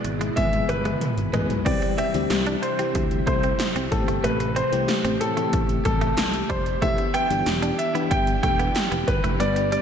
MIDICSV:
0, 0, Header, 1, 8, 480
1, 0, Start_track
1, 0, Tempo, 645161
1, 1236, Time_signature, 4, 2, 24, 8
1, 7305, End_track
2, 0, Start_track
2, 0, Title_t, "Grand piano"
2, 0, Program_c, 0, 0
2, 0, Note_on_c, 0, 74, 83
2, 243, Note_off_c, 0, 74, 0
2, 269, Note_on_c, 0, 76, 100
2, 495, Note_off_c, 0, 76, 0
2, 511, Note_on_c, 0, 71, 79
2, 964, Note_off_c, 0, 71, 0
2, 991, Note_on_c, 0, 71, 65
2, 1228, Note_on_c, 0, 74, 83
2, 1240, Note_off_c, 0, 71, 0
2, 1469, Note_on_c, 0, 76, 87
2, 1479, Note_off_c, 0, 74, 0
2, 1951, Note_on_c, 0, 72, 82
2, 1967, Note_off_c, 0, 76, 0
2, 2418, Note_off_c, 0, 72, 0
2, 2429, Note_on_c, 0, 72, 86
2, 2911, Note_on_c, 0, 69, 76
2, 2927, Note_off_c, 0, 72, 0
2, 3137, Note_off_c, 0, 69, 0
2, 3152, Note_on_c, 0, 71, 82
2, 3392, Note_on_c, 0, 72, 94
2, 3401, Note_off_c, 0, 71, 0
2, 3873, Note_on_c, 0, 69, 100
2, 3888, Note_off_c, 0, 72, 0
2, 4341, Note_off_c, 0, 69, 0
2, 4352, Note_on_c, 0, 69, 93
2, 4832, Note_on_c, 0, 72, 86
2, 4848, Note_off_c, 0, 69, 0
2, 5072, Note_on_c, 0, 76, 104
2, 5081, Note_off_c, 0, 72, 0
2, 5311, Note_on_c, 0, 79, 116
2, 5321, Note_off_c, 0, 76, 0
2, 5792, Note_on_c, 0, 76, 91
2, 5808, Note_off_c, 0, 79, 0
2, 6032, Note_on_c, 0, 79, 102
2, 6041, Note_off_c, 0, 76, 0
2, 6257, Note_off_c, 0, 79, 0
2, 6272, Note_on_c, 0, 79, 106
2, 6752, Note_on_c, 0, 71, 81
2, 6768, Note_off_c, 0, 79, 0
2, 6993, Note_on_c, 0, 74, 90
2, 7001, Note_off_c, 0, 71, 0
2, 7220, Note_off_c, 0, 74, 0
2, 7232, Note_on_c, 0, 74, 97
2, 7305, Note_off_c, 0, 74, 0
2, 7305, End_track
3, 0, Start_track
3, 0, Title_t, "FM electric piano"
3, 0, Program_c, 1, 5
3, 0, Control_c, 1, 64, 127
3, 0, Note_on_c, 1, 52, 82
3, 0, Note_on_c, 1, 56, 74
3, 0, Note_on_c, 1, 59, 74
3, 0, Note_on_c, 1, 68, 86
3, 270, Note_off_c, 1, 52, 0
3, 270, Note_on_c, 1, 52, 69
3, 273, Note_off_c, 1, 56, 0
3, 273, Note_on_c, 1, 56, 61
3, 276, Note_off_c, 1, 59, 0
3, 276, Note_on_c, 1, 59, 62
3, 279, Note_off_c, 1, 68, 0
3, 279, Note_on_c, 1, 68, 75
3, 727, Note_off_c, 1, 52, 0
3, 728, Note_off_c, 1, 56, 0
3, 729, Note_off_c, 1, 59, 0
3, 731, Note_off_c, 1, 68, 0
3, 990, Note_on_c, 1, 52, 63
3, 992, Note_on_c, 1, 56, 60
3, 995, Note_on_c, 1, 59, 55
3, 999, Note_on_c, 1, 68, 66
3, 1144, Note_off_c, 1, 52, 0
3, 1145, Note_off_c, 1, 56, 0
3, 1147, Note_off_c, 1, 59, 0
3, 1148, Note_off_c, 1, 68, 0
3, 1229, Note_on_c, 1, 52, 68
3, 1232, Note_on_c, 1, 55, 62
3, 1236, Note_on_c, 1, 60, 64
3, 1239, Note_on_c, 1, 67, 74
3, 1245, Control_c, 1, 64, 0
3, 1369, Control_c, 1, 64, 127
3, 1459, Note_off_c, 1, 52, 0
3, 1461, Note_off_c, 1, 55, 0
3, 1462, Note_off_c, 1, 60, 0
3, 1464, Note_off_c, 1, 67, 0
3, 1591, Note_on_c, 1, 52, 69
3, 1594, Note_on_c, 1, 55, 63
3, 1597, Note_on_c, 1, 60, 66
3, 1600, Note_on_c, 1, 67, 75
3, 1896, Note_off_c, 1, 52, 0
3, 1897, Note_off_c, 1, 55, 0
3, 1899, Note_off_c, 1, 60, 0
3, 1900, Note_off_c, 1, 67, 0
3, 2073, Note_on_c, 1, 52, 68
3, 2076, Note_on_c, 1, 55, 61
3, 2079, Note_on_c, 1, 60, 61
3, 2082, Note_on_c, 1, 67, 78
3, 2679, Note_off_c, 1, 52, 0
3, 2681, Note_off_c, 1, 55, 0
3, 2682, Note_off_c, 1, 60, 0
3, 2684, Note_off_c, 1, 67, 0
3, 2912, Note_on_c, 1, 52, 76
3, 2915, Note_on_c, 1, 57, 66
3, 2918, Note_on_c, 1, 60, 65
3, 2921, Note_on_c, 1, 67, 81
3, 2925, Control_c, 1, 64, 0
3, 3077, Control_c, 1, 64, 127
3, 3394, Note_off_c, 1, 52, 0
3, 3395, Note_off_c, 1, 57, 0
3, 3397, Note_off_c, 1, 60, 0
3, 3398, Note_off_c, 1, 67, 0
3, 3512, Note_on_c, 1, 52, 68
3, 3514, Note_on_c, 1, 57, 66
3, 3517, Note_on_c, 1, 60, 62
3, 3521, Note_on_c, 1, 67, 77
3, 3816, Note_off_c, 1, 52, 0
3, 3817, Note_off_c, 1, 57, 0
3, 3819, Note_off_c, 1, 60, 0
3, 3821, Note_off_c, 1, 67, 0
3, 3992, Note_on_c, 1, 52, 67
3, 3994, Note_on_c, 1, 57, 62
3, 3998, Note_on_c, 1, 60, 66
3, 4000, Note_on_c, 1, 67, 74
3, 4599, Note_off_c, 1, 52, 0
3, 4600, Note_off_c, 1, 57, 0
3, 4602, Note_off_c, 1, 60, 0
3, 4603, Note_off_c, 1, 67, 0
3, 5071, Note_on_c, 1, 52, 69
3, 5074, Note_on_c, 1, 59, 63
3, 5078, Note_on_c, 1, 62, 68
3, 5080, Note_on_c, 1, 67, 78
3, 5084, Control_c, 1, 64, 0
3, 5214, Control_c, 1, 64, 127
3, 5300, Note_off_c, 1, 52, 0
3, 5302, Note_off_c, 1, 59, 0
3, 5304, Note_off_c, 1, 62, 0
3, 5304, Note_off_c, 1, 67, 0
3, 5430, Note_on_c, 1, 52, 70
3, 5432, Note_on_c, 1, 59, 61
3, 5436, Note_on_c, 1, 62, 67
3, 5439, Note_on_c, 1, 67, 79
3, 5735, Note_off_c, 1, 52, 0
3, 5736, Note_off_c, 1, 59, 0
3, 5738, Note_off_c, 1, 62, 0
3, 5740, Note_off_c, 1, 67, 0
3, 5910, Note_on_c, 1, 52, 70
3, 5914, Note_on_c, 1, 59, 66
3, 5916, Note_on_c, 1, 62, 64
3, 5920, Note_on_c, 1, 67, 79
3, 6518, Note_off_c, 1, 52, 0
3, 6519, Note_off_c, 1, 59, 0
3, 6521, Note_off_c, 1, 62, 0
3, 6523, Note_off_c, 1, 67, 0
3, 6992, Note_on_c, 1, 55, 74
3, 6995, Note_on_c, 1, 59, 67
3, 6998, Note_on_c, 1, 62, 65
3, 7001, Note_on_c, 1, 71, 79
3, 7006, Control_c, 1, 64, 0
3, 7123, Control_c, 1, 64, 127
3, 7221, Note_off_c, 1, 55, 0
3, 7222, Note_off_c, 1, 59, 0
3, 7223, Note_off_c, 1, 62, 0
3, 7225, Note_off_c, 1, 71, 0
3, 7305, End_track
4, 0, Start_track
4, 0, Title_t, "Clean electric guitar"
4, 0, Program_c, 2, 27
4, 155, Note_on_c, 2, 56, 67
4, 222, Note_off_c, 2, 56, 0
4, 515, Note_on_c, 2, 55, 65
4, 582, Note_off_c, 2, 55, 0
4, 635, Note_on_c, 2, 56, 73
4, 702, Note_off_c, 2, 56, 0
4, 995, Note_on_c, 2, 56, 80
4, 1062, Note_off_c, 2, 56, 0
4, 1234, Note_on_c, 2, 60, 82
4, 1301, Note_off_c, 2, 60, 0
4, 1476, Note_on_c, 2, 60, 69
4, 1543, Note_off_c, 2, 60, 0
4, 1835, Note_on_c, 2, 62, 67
4, 1902, Note_off_c, 2, 62, 0
4, 2075, Note_on_c, 2, 60, 69
4, 2142, Note_off_c, 2, 60, 0
4, 2436, Note_on_c, 2, 57, 73
4, 2503, Note_off_c, 2, 57, 0
4, 2557, Note_on_c, 2, 60, 64
4, 2623, Note_off_c, 2, 60, 0
4, 2797, Note_on_c, 2, 60, 67
4, 2863, Note_off_c, 2, 60, 0
4, 3036, Note_on_c, 2, 57, 67
4, 3103, Note_off_c, 2, 57, 0
4, 3155, Note_on_c, 2, 57, 86
4, 3222, Note_off_c, 2, 57, 0
4, 3394, Note_on_c, 2, 60, 77
4, 3461, Note_off_c, 2, 60, 0
4, 3754, Note_on_c, 2, 60, 67
4, 3821, Note_off_c, 2, 60, 0
4, 3995, Note_on_c, 2, 57, 68
4, 4062, Note_off_c, 2, 57, 0
4, 4355, Note_on_c, 2, 55, 68
4, 4422, Note_off_c, 2, 55, 0
4, 4474, Note_on_c, 2, 57, 76
4, 4541, Note_off_c, 2, 57, 0
4, 4834, Note_on_c, 2, 55, 92
4, 4901, Note_off_c, 2, 55, 0
4, 5076, Note_on_c, 2, 57, 83
4, 5142, Note_off_c, 2, 57, 0
4, 5314, Note_on_c, 2, 59, 77
4, 5381, Note_off_c, 2, 59, 0
4, 5672, Note_on_c, 2, 62, 70
4, 5740, Note_off_c, 2, 62, 0
4, 5914, Note_on_c, 2, 59, 74
4, 5981, Note_off_c, 2, 59, 0
4, 6274, Note_on_c, 2, 57, 72
4, 6341, Note_off_c, 2, 57, 0
4, 6394, Note_on_c, 2, 59, 67
4, 6461, Note_off_c, 2, 59, 0
4, 6634, Note_on_c, 2, 59, 74
4, 6701, Note_off_c, 2, 59, 0
4, 6873, Note_on_c, 2, 57, 72
4, 6941, Note_off_c, 2, 57, 0
4, 6993, Note_on_c, 2, 55, 90
4, 7060, Note_off_c, 2, 55, 0
4, 7233, Note_on_c, 2, 55, 83
4, 7301, Note_off_c, 2, 55, 0
4, 7305, End_track
5, 0, Start_track
5, 0, Title_t, "String machine"
5, 0, Program_c, 3, 50
5, 0, Note_on_c, 3, 47, 76
5, 0, Note_on_c, 3, 56, 68
5, 0, Note_on_c, 3, 64, 79
5, 1216, Note_off_c, 3, 47, 0
5, 1216, Note_off_c, 3, 56, 0
5, 1216, Note_off_c, 3, 64, 0
5, 1233, Note_on_c, 3, 48, 74
5, 1233, Note_on_c, 3, 55, 68
5, 1233, Note_on_c, 3, 64, 83
5, 2898, Note_off_c, 3, 55, 0
5, 2898, Note_off_c, 3, 64, 0
5, 2917, Note_on_c, 3, 67, 88
5, 2918, Note_on_c, 3, 57, 69
5, 5045, Note_off_c, 3, 48, 0
5, 5055, Note_off_c, 3, 57, 0
5, 5074, Note_on_c, 3, 52, 78
5, 5075, Note_on_c, 3, 62, 71
5, 6976, Note_off_c, 3, 52, 0
5, 6976, Note_off_c, 3, 62, 0
5, 6995, Note_on_c, 3, 59, 72
5, 6996, Note_on_c, 3, 50, 81
5, 7305, Note_off_c, 3, 50, 0
5, 7305, Note_off_c, 3, 59, 0
5, 7305, Note_off_c, 3, 67, 0
5, 7305, End_track
6, 0, Start_track
6, 0, Title_t, "Fretless electric bass"
6, 0, Program_c, 4, 35
6, 34, Note_on_c, 4, 32, 85
6, 214, Note_off_c, 4, 32, 0
6, 277, Note_on_c, 4, 32, 91
6, 456, Note_off_c, 4, 32, 0
6, 515, Note_on_c, 4, 31, 85
6, 695, Note_off_c, 4, 31, 0
6, 876, Note_on_c, 4, 32, 71
6, 966, Note_off_c, 4, 32, 0
6, 995, Note_on_c, 4, 33, 80
6, 1085, Note_off_c, 4, 33, 0
6, 1115, Note_on_c, 4, 35, 73
6, 1205, Note_off_c, 4, 35, 0
6, 1236, Note_on_c, 4, 36, 93
6, 1326, Note_off_c, 4, 36, 0
6, 1594, Note_on_c, 4, 38, 87
6, 1685, Note_off_c, 4, 38, 0
6, 1715, Note_on_c, 4, 36, 87
6, 1895, Note_off_c, 4, 36, 0
6, 2197, Note_on_c, 4, 38, 82
6, 2376, Note_off_c, 4, 38, 0
6, 2434, Note_on_c, 4, 36, 84
6, 2615, Note_off_c, 4, 36, 0
6, 2796, Note_on_c, 4, 36, 80
6, 2886, Note_off_c, 4, 36, 0
6, 2916, Note_on_c, 4, 33, 102
6, 3006, Note_off_c, 4, 33, 0
6, 3036, Note_on_c, 4, 31, 78
6, 3126, Note_off_c, 4, 31, 0
6, 3155, Note_on_c, 4, 33, 103
6, 3425, Note_off_c, 4, 33, 0
6, 3516, Note_on_c, 4, 36, 80
6, 3606, Note_off_c, 4, 36, 0
6, 3754, Note_on_c, 4, 33, 90
6, 3845, Note_off_c, 4, 33, 0
6, 3874, Note_on_c, 4, 45, 85
6, 4055, Note_off_c, 4, 45, 0
6, 4118, Note_on_c, 4, 33, 86
6, 4297, Note_off_c, 4, 33, 0
6, 4354, Note_on_c, 4, 33, 81
6, 4534, Note_off_c, 4, 33, 0
6, 4595, Note_on_c, 4, 36, 94
6, 4775, Note_off_c, 4, 36, 0
6, 4835, Note_on_c, 4, 29, 96
6, 5015, Note_off_c, 4, 29, 0
6, 5076, Note_on_c, 4, 28, 104
6, 5166, Note_off_c, 4, 28, 0
6, 5436, Note_on_c, 4, 31, 91
6, 5526, Note_off_c, 4, 31, 0
6, 5554, Note_on_c, 4, 28, 91
6, 5735, Note_off_c, 4, 28, 0
6, 6037, Note_on_c, 4, 31, 91
6, 6216, Note_off_c, 4, 31, 0
6, 6274, Note_on_c, 4, 28, 92
6, 6454, Note_off_c, 4, 28, 0
6, 6635, Note_on_c, 4, 28, 82
6, 6725, Note_off_c, 4, 28, 0
6, 6755, Note_on_c, 4, 31, 88
6, 6845, Note_off_c, 4, 31, 0
6, 6875, Note_on_c, 4, 29, 81
6, 6994, Note_off_c, 4, 29, 0
6, 6994, Note_on_c, 4, 31, 96
6, 7264, Note_off_c, 4, 31, 0
6, 7305, End_track
7, 0, Start_track
7, 0, Title_t, "Muted clean electric guitar strokes"
7, 35, Note_on_c, 9, 29, 42
7, 110, Note_off_c, 9, 29, 0
7, 276, Note_on_c, 9, 29, 41
7, 350, Note_off_c, 9, 29, 0
7, 1356, Note_on_c, 9, 29, 42
7, 1431, Note_off_c, 9, 29, 0
7, 1955, Note_on_c, 9, 29, 42
7, 2029, Note_off_c, 9, 29, 0
7, 2196, Note_on_c, 9, 29, 42
7, 2271, Note_off_c, 9, 29, 0
7, 2917, Note_on_c, 9, 29, 44
7, 2991, Note_off_c, 9, 29, 0
7, 3275, Note_on_c, 9, 29, 43
7, 3350, Note_off_c, 9, 29, 0
7, 3874, Note_on_c, 9, 29, 41
7, 3948, Note_off_c, 9, 29, 0
7, 4115, Note_on_c, 9, 29, 41
7, 4189, Note_off_c, 9, 29, 0
7, 5196, Note_on_c, 9, 29, 45
7, 5270, Note_off_c, 9, 29, 0
7, 5794, Note_on_c, 9, 29, 42
7, 5868, Note_off_c, 9, 29, 0
7, 6034, Note_on_c, 9, 29, 42
7, 6108, Note_off_c, 9, 29, 0
7, 6752, Note_on_c, 9, 29, 46
7, 6826, Note_off_c, 9, 29, 0
7, 7113, Note_on_c, 9, 29, 44
7, 7188, Note_off_c, 9, 29, 0
7, 7305, End_track
8, 0, Start_track
8, 0, Title_t, "Drums"
8, 34, Note_on_c, 9, 42, 69
8, 108, Note_off_c, 9, 42, 0
8, 156, Note_on_c, 9, 42, 51
8, 230, Note_off_c, 9, 42, 0
8, 274, Note_on_c, 9, 42, 87
8, 274, Note_on_c, 9, 48, 50
8, 277, Note_on_c, 9, 36, 83
8, 349, Note_off_c, 9, 42, 0
8, 349, Note_off_c, 9, 48, 0
8, 351, Note_off_c, 9, 36, 0
8, 394, Note_on_c, 9, 42, 43
8, 395, Note_on_c, 9, 48, 48
8, 469, Note_off_c, 9, 42, 0
8, 469, Note_off_c, 9, 48, 0
8, 514, Note_on_c, 9, 42, 66
8, 588, Note_off_c, 9, 42, 0
8, 634, Note_on_c, 9, 42, 47
8, 634, Note_on_c, 9, 47, 57
8, 709, Note_off_c, 9, 42, 0
8, 709, Note_off_c, 9, 47, 0
8, 754, Note_on_c, 9, 42, 84
8, 754, Note_on_c, 9, 45, 77
8, 828, Note_off_c, 9, 42, 0
8, 829, Note_off_c, 9, 45, 0
8, 875, Note_on_c, 9, 42, 49
8, 949, Note_off_c, 9, 42, 0
8, 993, Note_on_c, 9, 42, 60
8, 995, Note_on_c, 9, 43, 80
8, 1068, Note_off_c, 9, 42, 0
8, 1069, Note_off_c, 9, 43, 0
8, 1115, Note_on_c, 9, 43, 78
8, 1116, Note_on_c, 9, 42, 46
8, 1190, Note_off_c, 9, 43, 0
8, 1191, Note_off_c, 9, 42, 0
8, 1235, Note_on_c, 9, 42, 77
8, 1235, Note_on_c, 9, 49, 84
8, 1236, Note_on_c, 9, 36, 104
8, 1309, Note_off_c, 9, 49, 0
8, 1310, Note_off_c, 9, 36, 0
8, 1310, Note_off_c, 9, 42, 0
8, 1354, Note_on_c, 9, 42, 48
8, 1428, Note_off_c, 9, 42, 0
8, 1475, Note_on_c, 9, 42, 84
8, 1549, Note_off_c, 9, 42, 0
8, 1595, Note_on_c, 9, 42, 54
8, 1669, Note_off_c, 9, 42, 0
8, 1714, Note_on_c, 9, 38, 93
8, 1714, Note_on_c, 9, 42, 67
8, 1716, Note_on_c, 9, 39, 83
8, 1788, Note_off_c, 9, 38, 0
8, 1788, Note_off_c, 9, 42, 0
8, 1791, Note_off_c, 9, 39, 0
8, 1833, Note_on_c, 9, 42, 58
8, 1907, Note_off_c, 9, 42, 0
8, 1955, Note_on_c, 9, 42, 74
8, 2029, Note_off_c, 9, 42, 0
8, 2076, Note_on_c, 9, 42, 52
8, 2150, Note_off_c, 9, 42, 0
8, 2194, Note_on_c, 9, 42, 88
8, 2197, Note_on_c, 9, 36, 91
8, 2269, Note_off_c, 9, 42, 0
8, 2272, Note_off_c, 9, 36, 0
8, 2315, Note_on_c, 9, 42, 42
8, 2389, Note_off_c, 9, 42, 0
8, 2433, Note_on_c, 9, 42, 72
8, 2434, Note_on_c, 9, 36, 91
8, 2508, Note_off_c, 9, 42, 0
8, 2509, Note_off_c, 9, 36, 0
8, 2555, Note_on_c, 9, 42, 49
8, 2629, Note_off_c, 9, 42, 0
8, 2675, Note_on_c, 9, 39, 96
8, 2676, Note_on_c, 9, 38, 108
8, 2676, Note_on_c, 9, 42, 89
8, 2749, Note_off_c, 9, 39, 0
8, 2750, Note_off_c, 9, 42, 0
8, 2751, Note_off_c, 9, 38, 0
8, 2796, Note_on_c, 9, 42, 55
8, 2871, Note_off_c, 9, 42, 0
8, 2915, Note_on_c, 9, 42, 64
8, 2916, Note_on_c, 9, 36, 76
8, 2990, Note_off_c, 9, 36, 0
8, 2990, Note_off_c, 9, 42, 0
8, 3038, Note_on_c, 9, 42, 47
8, 3112, Note_off_c, 9, 42, 0
8, 3157, Note_on_c, 9, 42, 82
8, 3231, Note_off_c, 9, 42, 0
8, 3275, Note_on_c, 9, 42, 52
8, 3349, Note_off_c, 9, 42, 0
8, 3395, Note_on_c, 9, 42, 83
8, 3470, Note_off_c, 9, 42, 0
8, 3516, Note_on_c, 9, 42, 57
8, 3590, Note_off_c, 9, 42, 0
8, 3635, Note_on_c, 9, 38, 99
8, 3635, Note_on_c, 9, 42, 68
8, 3638, Note_on_c, 9, 39, 84
8, 3709, Note_off_c, 9, 38, 0
8, 3709, Note_off_c, 9, 42, 0
8, 3712, Note_off_c, 9, 39, 0
8, 3755, Note_on_c, 9, 42, 59
8, 3829, Note_off_c, 9, 42, 0
8, 3876, Note_on_c, 9, 42, 75
8, 3950, Note_off_c, 9, 42, 0
8, 3997, Note_on_c, 9, 42, 50
8, 4071, Note_off_c, 9, 42, 0
8, 4114, Note_on_c, 9, 42, 90
8, 4117, Note_on_c, 9, 36, 89
8, 4189, Note_off_c, 9, 42, 0
8, 4192, Note_off_c, 9, 36, 0
8, 4235, Note_on_c, 9, 42, 46
8, 4309, Note_off_c, 9, 42, 0
8, 4353, Note_on_c, 9, 42, 76
8, 4354, Note_on_c, 9, 36, 91
8, 4428, Note_off_c, 9, 42, 0
8, 4429, Note_off_c, 9, 36, 0
8, 4474, Note_on_c, 9, 42, 49
8, 4549, Note_off_c, 9, 42, 0
8, 4594, Note_on_c, 9, 42, 85
8, 4595, Note_on_c, 9, 38, 112
8, 4596, Note_on_c, 9, 39, 92
8, 4668, Note_off_c, 9, 42, 0
8, 4669, Note_off_c, 9, 38, 0
8, 4670, Note_off_c, 9, 39, 0
8, 4714, Note_on_c, 9, 42, 52
8, 4789, Note_off_c, 9, 42, 0
8, 4834, Note_on_c, 9, 42, 61
8, 4836, Note_on_c, 9, 36, 74
8, 4908, Note_off_c, 9, 42, 0
8, 4910, Note_off_c, 9, 36, 0
8, 4956, Note_on_c, 9, 42, 49
8, 5031, Note_off_c, 9, 42, 0
8, 5075, Note_on_c, 9, 42, 79
8, 5076, Note_on_c, 9, 36, 110
8, 5150, Note_off_c, 9, 36, 0
8, 5150, Note_off_c, 9, 42, 0
8, 5194, Note_on_c, 9, 42, 48
8, 5269, Note_off_c, 9, 42, 0
8, 5315, Note_on_c, 9, 42, 86
8, 5389, Note_off_c, 9, 42, 0
8, 5435, Note_on_c, 9, 42, 58
8, 5509, Note_off_c, 9, 42, 0
8, 5554, Note_on_c, 9, 38, 104
8, 5554, Note_on_c, 9, 42, 67
8, 5556, Note_on_c, 9, 39, 81
8, 5628, Note_off_c, 9, 38, 0
8, 5628, Note_off_c, 9, 42, 0
8, 5630, Note_off_c, 9, 39, 0
8, 5674, Note_on_c, 9, 42, 62
8, 5749, Note_off_c, 9, 42, 0
8, 5795, Note_on_c, 9, 42, 79
8, 5870, Note_off_c, 9, 42, 0
8, 5917, Note_on_c, 9, 42, 52
8, 5991, Note_off_c, 9, 42, 0
8, 6034, Note_on_c, 9, 42, 86
8, 6037, Note_on_c, 9, 36, 96
8, 6109, Note_off_c, 9, 42, 0
8, 6111, Note_off_c, 9, 36, 0
8, 6155, Note_on_c, 9, 42, 47
8, 6229, Note_off_c, 9, 42, 0
8, 6274, Note_on_c, 9, 36, 88
8, 6274, Note_on_c, 9, 42, 74
8, 6348, Note_off_c, 9, 36, 0
8, 6348, Note_off_c, 9, 42, 0
8, 6395, Note_on_c, 9, 42, 50
8, 6470, Note_off_c, 9, 42, 0
8, 6514, Note_on_c, 9, 39, 90
8, 6515, Note_on_c, 9, 42, 93
8, 6516, Note_on_c, 9, 38, 109
8, 6588, Note_off_c, 9, 39, 0
8, 6589, Note_off_c, 9, 42, 0
8, 6590, Note_off_c, 9, 38, 0
8, 6635, Note_on_c, 9, 42, 56
8, 6710, Note_off_c, 9, 42, 0
8, 6754, Note_on_c, 9, 42, 61
8, 6755, Note_on_c, 9, 36, 78
8, 6829, Note_off_c, 9, 42, 0
8, 6830, Note_off_c, 9, 36, 0
8, 6877, Note_on_c, 9, 42, 47
8, 6951, Note_off_c, 9, 42, 0
8, 6996, Note_on_c, 9, 42, 83
8, 7070, Note_off_c, 9, 42, 0
8, 7114, Note_on_c, 9, 42, 53
8, 7189, Note_off_c, 9, 42, 0
8, 7234, Note_on_c, 9, 42, 89
8, 7305, Note_off_c, 9, 42, 0
8, 7305, End_track
0, 0, End_of_file